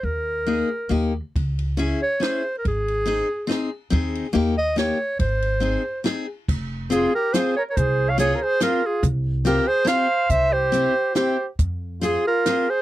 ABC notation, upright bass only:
X:1
M:3/4
L:1/8
Q:1/4=141
K:Ab
V:1 name="Upright bass" clef=bass
E,,4 E,,2 | D,,4 z2 | A,,,4 z2 | E,,2 E,,4 |
A,,,4 z2 | [K:Fm] F,,,4 z2 | C,,4 z2 | C,,4 z2 |
C,,4 z2 | F,,4 z2 |]